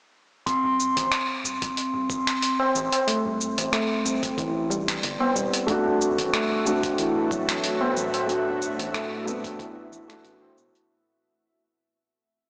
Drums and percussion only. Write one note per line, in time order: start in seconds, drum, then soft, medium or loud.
0.47 kick loud
0.47 closed hi-hat soft
0.47 shaker soft
0.64 tabla ge medium
0.80 shaker medium
0.96 kick medium
0.96 closed hi-hat medium
0.96 tabla tin medium
0.96 shaker soft
1.12 finger snap medium
1.12 closed hi-hat soft
1.12 shaker soft
1.44 tabla ge medium
1.44 shaker medium
1.62 kick loud
1.62 closed hi-hat medium
1.62 shaker soft
1.77 closed hi-hat soft
1.77 shaker soft
1.94 tabla ge medium
2.10 kick loud
2.10 shaker medium
2.27 finger snap medium
2.27 closed hi-hat soft
2.27 shaker soft
2.42 closed hi-hat soft
2.42 shaker soft
2.60 tabla na medium
2.75 shaker medium
2.92 closed hi-hat soft
2.92 tabla na medium
2.92 tabla tin soft
2.92 shaker soft
3.08 closed hi-hat soft
3.08 shaker soft
3.25 tabla ge medium
3.41 shaker medium
3.58 closed hi-hat medium
3.58 tabla tin medium
3.58 shaker soft
3.73 finger snap medium
3.73 closed hi-hat soft
3.73 shaker soft
4.05 tabla ge medium
4.05 shaker medium
4.23 kick loud
4.23 closed hi-hat medium
4.23 tabla na soft
4.23 shaker soft
4.37 kick loud
4.37 closed hi-hat soft
4.37 tabla tin soft
4.37 shaker soft
4.71 shaker medium
4.88 finger snap medium
4.88 closed hi-hat medium
4.88 shaker soft
5.03 closed hi-hat soft
5.03 shaker soft
5.20 tabla na medium
5.20 tabla tin soft
5.35 tabla tin medium
5.35 shaker medium
5.54 closed hi-hat soft
5.54 shaker soft
5.68 kick loud
5.68 closed hi-hat soft
5.68 shaker soft
5.86 tabla ge loud
6.01 shaker medium
6.18 kick medium
6.18 closed hi-hat medium
6.18 tabla tin medium
6.18 shaker soft
6.34 finger snap medium
6.34 closed hi-hat soft
6.34 shaker soft
6.65 tabla ge medium
6.65 shaker medium
6.83 kick loud
6.83 closed hi-hat medium
6.83 shaker soft
6.98 closed hi-hat soft
6.98 shaker soft
7.15 tabla ge medium
7.31 kick loud
7.31 shaker medium
7.49 finger snap medium
7.49 closed hi-hat soft
7.49 shaker soft
7.64 closed hi-hat soft
7.64 shaker soft
7.81 tabla na medium
7.97 shaker medium
8.13 closed hi-hat medium
8.13 tabla na medium
8.13 tabla tin soft
8.13 shaker soft
8.29 closed hi-hat soft
8.29 shaker soft
8.46 tabla ge loud
8.61 tabla na soft
8.61 shaker medium
8.79 closed hi-hat medium
8.79 tabla tin medium
8.79 shaker soft
8.94 finger snap medium
8.94 closed hi-hat soft
8.94 shaker soft
9.26 tabla ge medium
9.26 shaker medium
9.44 kick loud
9.44 closed hi-hat medium
9.44 tabla na soft
9.44 shaker soft
9.59 kick loud
9.59 closed hi-hat soft
9.59 tabla tin soft
9.59 shaker soft
9.93 shaker medium
10.10 finger snap medium
10.10 closed hi-hat soft
10.10 shaker soft
10.25 closed hi-hat soft
10.25 shaker soft
10.41 tabla na medium
10.41 tabla tin soft
10.56 tabla tin medium
10.56 shaker medium
10.75 closed hi-hat soft
10.75 shaker soft